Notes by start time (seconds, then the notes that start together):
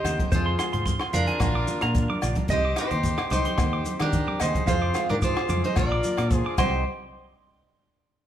Already playing: C4 D#4 G4 C5 D#5
0.04 D#2 A#3 C4 G4 C5, cross-stick, closed hi-hat, low conga, low agogo, shekere
0.19 kick, closed hi-hat, high conga
0.32 F2 F3 G#3 C4 F4 G#4 C5, muted nylon-string guitar stroke, kick, closed hi-hat, shekere
0.46 C6
0.59 G#3 C4 G#4 C6, cross-stick, closed hi-hat, low agogo, shekere
0.73 G#2 C6, closed hi-hat, low conga
0.85 C6, kick, closed hi-hat, shekere
0.99 C6, cross-stick, low agogo
1.13 F2 C4 D4 F4 G#4 A#4 F5, closed hi-hat, high conga, low conga, shekere
1.27 G#5, closed hi-hat, high conga
1.39 A#1 F3 A#3 D4 A#4, muted nylon-string guitar stroke, kick, cross-stick, closed hi-hat, low agogo, shekere
1.55 D6
1.67 A#3 D4 F4, closed hi-hat, high conga, shekere
1.81 A#2 A#5, cross-stick, closed hi-hat, low agogo
1.95 kick, closed hi-hat, shekere
2.10 D6, high conga
2.22 A#1 A#3 D4 F4 D5, closed hi-hat, low conga, low agogo, shekere
2.35 kick, closed hi-hat, high conga
2.48 C2 C4 D#4 G4 D#5, kick, closed hi-hat, shekere
2.52 C5
2.65 D6
2.76 D#4 G4 C5 D6, cross-stick, closed hi-hat, low agogo, shekere
2.91 D#2 D6, closed hi-hat, low conga
3.03 kick, closed hi-hat, shekere
3.18 D6, cross-stick, low agogo
3.30 C2 D#4 G4 C5 D6, closed hi-hat, high conga, low conga, shekere
3.35 G4
3.45 C6, closed hi-hat, high conga
3.58 D#2 A#3 C4 G4, kick, cross-stick, closed hi-hat, low agogo, shekere
3.73 D6
3.85 C4 G4, closed hi-hat, high conga, shekere
4.00 D#3 D4 A#4 D6, cross-stick, closed hi-hat, low agogo
4.04 G4
4.13 kick, closed hi-hat, shekere
4.28 D6, high conga
4.38 D#2 C4 D#4 G4 C5 D#5, cross-stick, closed hi-hat, low conga, low agogo, shekere
4.44 G#4
4.55 kick, closed hi-hat, high conga
4.67 F2 F3 C4 F4 G#4 C5 F5, muted nylon-string guitar stroke, kick, closed hi-hat, shekere
4.71 G#4
4.82 D6
4.94 G#3 C4 G#4 F5, cross-stick, closed hi-hat, low agogo, shekere
5.09 G#2 D4 G4 A#4 D6, closed hi-hat, low conga
5.22 F4 C5 D6, kick, closed hi-hat, shekere
5.26 G#4
5.36 D6, cross-stick, low agogo
5.49 F2 G#3 C4 G#4 D6, closed hi-hat, high conga, low conga, shekere
5.64 D#4 G#4 C5, closed hi-hat, high conga
5.76 A#1 F3 A#3 D4 F4 A#4 D5, muted nylon-string guitar stroke, kick, cross-stick, closed hi-hat, low agogo, shekere
5.92 D6
6.03 A#3 F4, muted nylon-string guitar stroke, closed hi-hat, high conga, shekere
6.17 A#2 D6, cross-stick, closed hi-hat, low agogo
6.31 G#4 C5, kick, closed hi-hat, shekere
6.46 D6
6.57 C2 G3 C4 D#4 G4 C5 D#5 G5 C6, muted nylon-string guitar stroke, kick, crash, high conga, low agogo, shekere